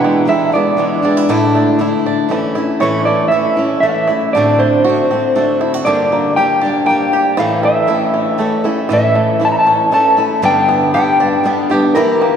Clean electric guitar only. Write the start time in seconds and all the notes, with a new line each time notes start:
Already playing: F#5
0.29 E5
0.54 D5
2.81 C#5
3.05 D5
3.28 E5
3.80 E5
3.89 F5
3.94 E5
4.33 D5
4.59 C5
5.85 D5
6.36 G5
6.86 G5
7.40 F5
7.65 E5
8.93 E5
9.45 A5
9.59 A5
9.94 A5
10.45 G5
10.95 G5
11.95 A#4